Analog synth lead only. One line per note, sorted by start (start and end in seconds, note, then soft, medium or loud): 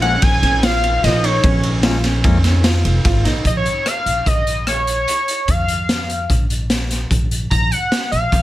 0.02 0.24 F#5 loud
0.22 0.64 G#5 loud
0.63 1.05 F5 loud
1.03 1.26 D#5 medium
1.24 1.64 C#5 medium
3.47 3.51 D#5 medium
3.57 3.89 C#5 medium
3.87 4.28 F5 loud
4.27 4.67 D#5 medium
4.68 5.51 C#5 medium
5.50 6.30 F5 medium
7.50 7.72 A#5 medium
7.71 8.11 F#5 medium
8.12 8.42 F5 medium